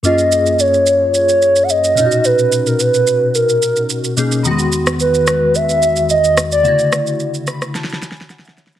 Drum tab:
SH |x--x--x--x--x--x--x-----x--x--x--x--x--x--x--x--|x--x--x--x--x--x--x-----x--x--x--x--x--x--x--x--|x--x--x--x--x--x--x-----x--x--x--x--x--x--x--x--|x--x--x--x--x--x--x--x--x--x--x--x--x--x--x--x--|
SD |------------------------------------------------|------------------------------------------------|---------r--------r-----------------------r-----|------r-----------r--r--o-o-o-o-o-o-o-o-o-o-o-o-|